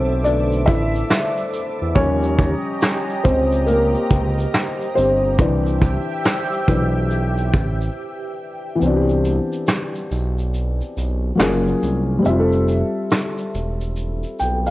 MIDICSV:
0, 0, Header, 1, 5, 480
1, 0, Start_track
1, 0, Tempo, 857143
1, 1098, Time_signature, 4, 2, 24, 8
1, 8234, End_track
2, 0, Start_track
2, 0, Title_t, "Analog synth pad"
2, 0, Program_c, 0, 89
2, 0, Note_on_c, 0, 69, 73
2, 0, Note_on_c, 0, 76, 68
2, 0, Note_on_c, 0, 86, 85
2, 1077, Note_off_c, 0, 86, 0
2, 1078, Note_off_c, 0, 69, 0
2, 1079, Note_off_c, 0, 76, 0
2, 1100, Note_on_c, 0, 67, 74
2, 1102, Note_on_c, 0, 75, 69
2, 1102, Note_on_c, 0, 82, 84
2, 3000, Note_off_c, 0, 67, 0
2, 3001, Note_off_c, 0, 75, 0
2, 3001, Note_off_c, 0, 82, 0
2, 3014, Note_on_c, 0, 76, 75
2, 3015, Note_on_c, 0, 79, 85
2, 3017, Note_on_c, 0, 67, 75
2, 4917, Note_off_c, 0, 76, 0
2, 4917, Note_off_c, 0, 79, 0
2, 4918, Note_off_c, 0, 67, 0
2, 8234, End_track
3, 0, Start_track
3, 0, Title_t, "Felt piano"
3, 0, Program_c, 1, 0
3, 0, Control_c, 1, 64, 127
3, 0, Note_on_c, 1, 50, 54
3, 0, Note_on_c, 1, 57, 54
3, 0, Note_on_c, 1, 59, 62
3, 0, Note_on_c, 1, 60, 75
3, 0, Note_on_c, 1, 69, 88
3, 0, Note_on_c, 1, 72, 94
3, 124, Note_off_c, 1, 60, 0
3, 135, Note_on_c, 1, 74, 101
3, 141, Note_off_c, 1, 72, 0
3, 142, Note_off_c, 1, 50, 0
3, 142, Note_on_c, 1, 50, 48
3, 143, Note_off_c, 1, 57, 0
3, 143, Note_on_c, 1, 57, 44
3, 145, Note_off_c, 1, 59, 0
3, 145, Note_on_c, 1, 59, 54
3, 146, Note_on_c, 1, 62, 74
3, 189, Note_off_c, 1, 74, 0
3, 199, Note_off_c, 1, 62, 0
3, 357, Note_off_c, 1, 50, 0
3, 358, Note_off_c, 1, 57, 0
3, 359, Note_off_c, 1, 59, 0
3, 368, Note_on_c, 1, 76, 102
3, 382, Note_on_c, 1, 64, 79
3, 830, Note_off_c, 1, 76, 0
3, 837, Note_off_c, 1, 64, 0
3, 1093, Note_on_c, 1, 53, 57
3, 1093, Note_on_c, 1, 73, 109
3, 1095, Note_on_c, 1, 55, 51
3, 1100, Note_on_c, 1, 61, 86
3, 1105, Control_c, 1, 64, 0
3, 1108, Note_off_c, 1, 69, 0
3, 1201, Control_c, 1, 64, 127
3, 1793, Note_off_c, 1, 53, 0
3, 1794, Note_off_c, 1, 55, 0
3, 1796, Note_off_c, 1, 61, 0
3, 1814, Note_on_c, 1, 72, 94
3, 1822, Note_on_c, 1, 60, 74
3, 1837, Note_off_c, 1, 73, 0
3, 2043, Note_off_c, 1, 60, 0
3, 2051, Note_on_c, 1, 70, 94
3, 2062, Note_on_c, 1, 58, 68
3, 2063, Note_off_c, 1, 72, 0
3, 2757, Note_off_c, 1, 58, 0
3, 2773, Note_on_c, 1, 72, 85
3, 2784, Note_on_c, 1, 60, 67
3, 2796, Note_off_c, 1, 70, 0
3, 3016, Note_on_c, 1, 52, 60
3, 3020, Note_on_c, 1, 71, 53
3, 3023, Note_on_c, 1, 62, 65
3, 3026, Control_c, 1, 64, 0
3, 3136, Control_c, 1, 64, 127
3, 3715, Note_off_c, 1, 52, 0
3, 3716, Note_off_c, 1, 71, 0
3, 3718, Note_off_c, 1, 62, 0
3, 3742, Note_on_c, 1, 52, 50
3, 3745, Note_on_c, 1, 71, 46
3, 3746, Note_on_c, 1, 62, 55
3, 3957, Note_off_c, 1, 52, 0
3, 3959, Note_off_c, 1, 62, 0
3, 3959, Note_off_c, 1, 71, 0
3, 4433, Note_off_c, 1, 72, 0
3, 4439, Note_off_c, 1, 60, 0
3, 4903, Note_on_c, 1, 52, 73
3, 4923, Note_on_c, 1, 59, 69
3, 4942, Note_on_c, 1, 60, 69
3, 4944, Control_c, 1, 64, 0
3, 4962, Note_on_c, 1, 62, 71
3, 4982, Note_on_c, 1, 66, 64
3, 5006, Note_off_c, 1, 66, 0
3, 5018, Note_on_c, 1, 67, 80
3, 5037, Control_c, 1, 64, 127
3, 6338, Note_off_c, 1, 52, 0
3, 6348, Note_off_c, 1, 59, 0
3, 6358, Note_off_c, 1, 60, 0
3, 6359, Note_on_c, 1, 54, 71
3, 6367, Note_off_c, 1, 62, 0
3, 6370, Note_on_c, 1, 58, 73
3, 6379, Note_on_c, 1, 61, 70
3, 6385, Control_c, 1, 64, 0
3, 6389, Note_on_c, 1, 65, 64
3, 6395, Note_off_c, 1, 67, 0
3, 6399, Note_on_c, 1, 68, 86
3, 6467, Control_c, 1, 64, 127
3, 6825, Note_on_c, 1, 55, 75
3, 6844, Note_on_c, 1, 60, 68
3, 6848, Note_off_c, 1, 54, 0
3, 6854, Note_off_c, 1, 58, 0
3, 6858, Note_off_c, 1, 61, 0
3, 6863, Note_off_c, 1, 65, 0
3, 6863, Note_on_c, 1, 76, 71
3, 6865, Control_c, 1, 64, 0
3, 6868, Note_off_c, 1, 68, 0
3, 6884, Note_on_c, 1, 65, 72
3, 6903, Note_on_c, 1, 67, 70
3, 6927, Note_off_c, 1, 67, 0
3, 6941, Note_on_c, 1, 69, 85
3, 6971, Control_c, 1, 64, 127
3, 8061, Note_on_c, 1, 79, 59
3, 8205, Note_off_c, 1, 79, 0
3, 8212, Note_on_c, 1, 77, 68
3, 8234, Note_off_c, 1, 55, 0
3, 8234, Note_off_c, 1, 60, 0
3, 8234, Note_off_c, 1, 65, 0
3, 8234, Note_off_c, 1, 69, 0
3, 8234, Note_off_c, 1, 76, 0
3, 8234, Note_off_c, 1, 77, 0
3, 8234, End_track
4, 0, Start_track
4, 0, Title_t, "Analog synth bass"
4, 0, Program_c, 2, 38
4, 0, Note_on_c, 2, 35, 96
4, 382, Note_on_c, 2, 33, 102
4, 390, Note_off_c, 2, 35, 0
4, 578, Note_off_c, 2, 33, 0
4, 1018, Note_on_c, 2, 40, 88
4, 1087, Note_off_c, 2, 40, 0
4, 1098, Note_on_c, 2, 39, 121
4, 1423, Note_off_c, 2, 39, 0
4, 1822, Note_on_c, 2, 37, 93
4, 2217, Note_off_c, 2, 37, 0
4, 2304, Note_on_c, 2, 37, 91
4, 2500, Note_off_c, 2, 37, 0
4, 2784, Note_on_c, 2, 31, 89
4, 3020, Note_on_c, 2, 36, 101
4, 3028, Note_off_c, 2, 31, 0
4, 3344, Note_off_c, 2, 36, 0
4, 3743, Note_on_c, 2, 35, 93
4, 4222, Note_on_c, 2, 33, 91
4, 4230, Note_off_c, 2, 35, 0
4, 4419, Note_off_c, 2, 33, 0
4, 4938, Note_on_c, 2, 36, 107
4, 5262, Note_off_c, 2, 36, 0
4, 5662, Note_on_c, 2, 35, 93
4, 6057, Note_off_c, 2, 35, 0
4, 6143, Note_on_c, 2, 35, 91
4, 6339, Note_off_c, 2, 35, 0
4, 6381, Note_on_c, 2, 30, 109
4, 6578, Note_off_c, 2, 30, 0
4, 6623, Note_on_c, 2, 36, 82
4, 6819, Note_off_c, 2, 36, 0
4, 6862, Note_on_c, 2, 29, 105
4, 7185, Note_off_c, 2, 29, 0
4, 7584, Note_on_c, 2, 28, 93
4, 7978, Note_off_c, 2, 28, 0
4, 8068, Note_on_c, 2, 35, 88
4, 8234, Note_off_c, 2, 35, 0
4, 8234, End_track
5, 0, Start_track
5, 0, Title_t, "Drums"
5, 139, Note_on_c, 9, 82, 66
5, 195, Note_off_c, 9, 82, 0
5, 290, Note_on_c, 9, 82, 41
5, 346, Note_off_c, 9, 82, 0
5, 377, Note_on_c, 9, 42, 74
5, 377, Note_on_c, 9, 82, 54
5, 379, Note_on_c, 9, 36, 99
5, 433, Note_off_c, 9, 42, 0
5, 433, Note_off_c, 9, 82, 0
5, 435, Note_off_c, 9, 36, 0
5, 534, Note_on_c, 9, 82, 48
5, 590, Note_off_c, 9, 82, 0
5, 618, Note_on_c, 9, 38, 127
5, 618, Note_on_c, 9, 82, 69
5, 674, Note_off_c, 9, 38, 0
5, 674, Note_off_c, 9, 82, 0
5, 769, Note_on_c, 9, 82, 42
5, 825, Note_off_c, 9, 82, 0
5, 858, Note_on_c, 9, 42, 67
5, 858, Note_on_c, 9, 82, 46
5, 914, Note_off_c, 9, 42, 0
5, 914, Note_off_c, 9, 82, 0
5, 1095, Note_on_c, 9, 82, 72
5, 1096, Note_on_c, 9, 36, 104
5, 1151, Note_off_c, 9, 82, 0
5, 1152, Note_off_c, 9, 36, 0
5, 1249, Note_on_c, 9, 82, 49
5, 1305, Note_off_c, 9, 82, 0
5, 1336, Note_on_c, 9, 36, 85
5, 1337, Note_on_c, 9, 42, 69
5, 1337, Note_on_c, 9, 82, 51
5, 1392, Note_off_c, 9, 36, 0
5, 1393, Note_off_c, 9, 42, 0
5, 1393, Note_off_c, 9, 82, 0
5, 1576, Note_on_c, 9, 82, 67
5, 1582, Note_on_c, 9, 38, 106
5, 1632, Note_off_c, 9, 82, 0
5, 1638, Note_off_c, 9, 38, 0
5, 1732, Note_on_c, 9, 82, 49
5, 1788, Note_off_c, 9, 82, 0
5, 1820, Note_on_c, 9, 36, 87
5, 1821, Note_on_c, 9, 42, 62
5, 1821, Note_on_c, 9, 82, 45
5, 1876, Note_off_c, 9, 36, 0
5, 1877, Note_off_c, 9, 42, 0
5, 1877, Note_off_c, 9, 82, 0
5, 1972, Note_on_c, 9, 82, 50
5, 2028, Note_off_c, 9, 82, 0
5, 2059, Note_on_c, 9, 82, 69
5, 2115, Note_off_c, 9, 82, 0
5, 2212, Note_on_c, 9, 82, 39
5, 2268, Note_off_c, 9, 82, 0
5, 2300, Note_on_c, 9, 36, 89
5, 2302, Note_on_c, 9, 42, 69
5, 2302, Note_on_c, 9, 82, 51
5, 2356, Note_off_c, 9, 36, 0
5, 2358, Note_off_c, 9, 42, 0
5, 2358, Note_off_c, 9, 82, 0
5, 2457, Note_on_c, 9, 82, 52
5, 2513, Note_off_c, 9, 82, 0
5, 2542, Note_on_c, 9, 38, 127
5, 2543, Note_on_c, 9, 82, 71
5, 2598, Note_off_c, 9, 38, 0
5, 2599, Note_off_c, 9, 82, 0
5, 2696, Note_on_c, 9, 82, 43
5, 2752, Note_off_c, 9, 82, 0
5, 2782, Note_on_c, 9, 42, 68
5, 2782, Note_on_c, 9, 82, 44
5, 2838, Note_off_c, 9, 42, 0
5, 2838, Note_off_c, 9, 82, 0
5, 3017, Note_on_c, 9, 36, 104
5, 3018, Note_on_c, 9, 82, 77
5, 3073, Note_off_c, 9, 36, 0
5, 3074, Note_off_c, 9, 82, 0
5, 3171, Note_on_c, 9, 82, 46
5, 3227, Note_off_c, 9, 82, 0
5, 3257, Note_on_c, 9, 36, 85
5, 3258, Note_on_c, 9, 42, 74
5, 3258, Note_on_c, 9, 82, 51
5, 3313, Note_off_c, 9, 36, 0
5, 3314, Note_off_c, 9, 42, 0
5, 3314, Note_off_c, 9, 82, 0
5, 3496, Note_on_c, 9, 82, 66
5, 3502, Note_on_c, 9, 38, 111
5, 3552, Note_off_c, 9, 82, 0
5, 3558, Note_off_c, 9, 38, 0
5, 3651, Note_on_c, 9, 82, 48
5, 3707, Note_off_c, 9, 82, 0
5, 3740, Note_on_c, 9, 36, 84
5, 3742, Note_on_c, 9, 42, 61
5, 3742, Note_on_c, 9, 82, 43
5, 3796, Note_off_c, 9, 36, 0
5, 3798, Note_off_c, 9, 42, 0
5, 3798, Note_off_c, 9, 82, 0
5, 3978, Note_on_c, 9, 82, 67
5, 4034, Note_off_c, 9, 82, 0
5, 4130, Note_on_c, 9, 82, 40
5, 4186, Note_off_c, 9, 82, 0
5, 4220, Note_on_c, 9, 36, 96
5, 4220, Note_on_c, 9, 42, 72
5, 4220, Note_on_c, 9, 82, 54
5, 4276, Note_off_c, 9, 36, 0
5, 4276, Note_off_c, 9, 42, 0
5, 4276, Note_off_c, 9, 82, 0
5, 4374, Note_on_c, 9, 82, 52
5, 4430, Note_off_c, 9, 82, 0
5, 4938, Note_on_c, 9, 82, 71
5, 4994, Note_off_c, 9, 82, 0
5, 5089, Note_on_c, 9, 82, 47
5, 5145, Note_off_c, 9, 82, 0
5, 5179, Note_on_c, 9, 42, 65
5, 5179, Note_on_c, 9, 82, 50
5, 5235, Note_off_c, 9, 42, 0
5, 5235, Note_off_c, 9, 82, 0
5, 5336, Note_on_c, 9, 82, 47
5, 5392, Note_off_c, 9, 82, 0
5, 5416, Note_on_c, 9, 82, 65
5, 5421, Note_on_c, 9, 38, 105
5, 5472, Note_off_c, 9, 82, 0
5, 5477, Note_off_c, 9, 38, 0
5, 5573, Note_on_c, 9, 82, 47
5, 5629, Note_off_c, 9, 82, 0
5, 5662, Note_on_c, 9, 42, 61
5, 5662, Note_on_c, 9, 82, 42
5, 5718, Note_off_c, 9, 42, 0
5, 5718, Note_off_c, 9, 82, 0
5, 5815, Note_on_c, 9, 82, 50
5, 5871, Note_off_c, 9, 82, 0
5, 5903, Note_on_c, 9, 82, 68
5, 5959, Note_off_c, 9, 82, 0
5, 6053, Note_on_c, 9, 82, 39
5, 6109, Note_off_c, 9, 82, 0
5, 6145, Note_on_c, 9, 42, 73
5, 6145, Note_on_c, 9, 82, 51
5, 6201, Note_off_c, 9, 42, 0
5, 6201, Note_off_c, 9, 82, 0
5, 6382, Note_on_c, 9, 38, 124
5, 6382, Note_on_c, 9, 82, 69
5, 6438, Note_off_c, 9, 38, 0
5, 6438, Note_off_c, 9, 82, 0
5, 6535, Note_on_c, 9, 82, 42
5, 6591, Note_off_c, 9, 82, 0
5, 6623, Note_on_c, 9, 42, 63
5, 6623, Note_on_c, 9, 82, 42
5, 6679, Note_off_c, 9, 42, 0
5, 6679, Note_off_c, 9, 82, 0
5, 6860, Note_on_c, 9, 82, 65
5, 6916, Note_off_c, 9, 82, 0
5, 7014, Note_on_c, 9, 82, 47
5, 7070, Note_off_c, 9, 82, 0
5, 7101, Note_on_c, 9, 42, 65
5, 7101, Note_on_c, 9, 82, 47
5, 7157, Note_off_c, 9, 42, 0
5, 7157, Note_off_c, 9, 82, 0
5, 7340, Note_on_c, 9, 82, 68
5, 7346, Note_on_c, 9, 38, 105
5, 7396, Note_off_c, 9, 82, 0
5, 7402, Note_off_c, 9, 38, 0
5, 7492, Note_on_c, 9, 82, 46
5, 7548, Note_off_c, 9, 82, 0
5, 7585, Note_on_c, 9, 42, 60
5, 7585, Note_on_c, 9, 82, 45
5, 7641, Note_off_c, 9, 42, 0
5, 7641, Note_off_c, 9, 82, 0
5, 7733, Note_on_c, 9, 82, 49
5, 7789, Note_off_c, 9, 82, 0
5, 7819, Note_on_c, 9, 82, 67
5, 7875, Note_off_c, 9, 82, 0
5, 7971, Note_on_c, 9, 82, 40
5, 8027, Note_off_c, 9, 82, 0
5, 8060, Note_on_c, 9, 42, 73
5, 8060, Note_on_c, 9, 82, 53
5, 8116, Note_off_c, 9, 42, 0
5, 8116, Note_off_c, 9, 82, 0
5, 8212, Note_on_c, 9, 82, 51
5, 8234, Note_off_c, 9, 82, 0
5, 8234, End_track
0, 0, End_of_file